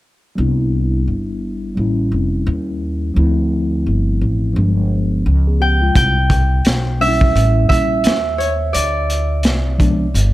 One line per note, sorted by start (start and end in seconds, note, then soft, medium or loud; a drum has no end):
0.35 1.04 C2 medium
0.35 1.73 G3 medium
0.35 1.74 B3 medium
0.35 1.75 D4 medium
0.40 1.76 E4 medium
1.08 1.74 G1 medium
1.75 2.10 A1 medium
1.75 3.13 G3 medium
1.75 3.14 A#3 medium
1.75 3.14 C#4 medium
1.80 3.15 E4 medium
2.12 2.45 F1 medium
2.47 3.13 D#2 medium
3.14 3.83 D2 medium
3.14 4.52 F3 medium
3.14 4.53 A3 medium
3.14 4.54 C4 medium
3.19 4.55 E4 medium
3.86 4.19 G1 medium
4.21 4.54 A1 medium
4.54 5.22 G1 medium
4.54 5.91 F3 medium
4.54 5.24 G#3 medium
4.54 4.64 A#3 soft
4.58 5.25 D4 medium
4.63 5.28 B3 medium
5.26 5.92 C#2 medium
5.47 5.60 B3 soft
5.47 5.60 G#4 medium
5.61 5.81 B3 soft
5.61 5.80 G4 medium
5.61 5.96 G5 medium
5.82 6.15 G#3 soft
5.82 6.15 F4 medium
5.95 6.62 C2 medium
5.95 7.52 G5 medium
5.95 kick medium
5.95 closed hi-hat medium
6.30 kick medium
6.30 closed hi-hat medium
6.65 7.32 B1 medium
6.65 snare loud
6.65 closed hi-hat medium
6.99 7.68 G3 medium
6.99 7.69 A#3 medium
6.99 7.70 C#4 medium
6.99 7.09 D4 medium
6.99 7.69 E5 loud
6.99 open hi-hat soft
7.08 7.71 E4 medium
7.21 kick medium
7.35 7.68 A1 loud
7.35 closed hi-hat medium
7.69 8.03 A#1 medium
7.69 8.13 G3 medium
7.69 8.13 A#3 medium
7.69 8.14 C#4 medium
7.69 8.14 E4 medium
7.69 9.41 E5 loud
7.69 kick medium
7.69 closed hi-hat medium
8.04 8.71 D#2 medium
8.04 snare loud
8.04 closed hi-hat medium
8.38 8.48 C#5 medium
8.38 closed hi-hat medium
8.73 9.45 D2 medium
8.73 10.34 D5 medium
8.73 closed hi-hat medium
9.10 closed hi-hat medium
9.43 10.11 C2 medium
9.43 snare medium
9.43 closed hi-hat medium
9.78 10.05 F3 medium
9.78 10.05 G#3 medium
9.78 10.06 B3 medium
9.78 10.06 D4 medium
9.78 kick medium
9.78 closed hi-hat medium
10.14 10.34 G1 medium
10.14 closed hi-hat medium